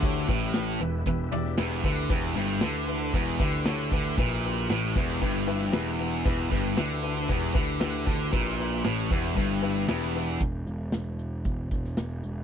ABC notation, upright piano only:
X:1
M:4/4
L:1/8
Q:1/4=116
K:Em
V:1 name="Upright piano"
[EG^c] [EGB] [EGB] [EGB] [EGB] [EGd] [EGB] [EGB] | [EGB] [EGB] [EGB] [EGB] [EGB] [EGB] [EG^c] [EGB] | [EGB] [EGB] [EGB] [EGB] [EGB] [EGB] [EGB] [EGB] | [EGB] [EGB] [EGB] [EGB] [EGB] [EGB] [EGB] [EGB] |
[EGB] [EGB] [EGB] [EGB] [EGB] [EGB] [EGB] [EGB] | z8 |]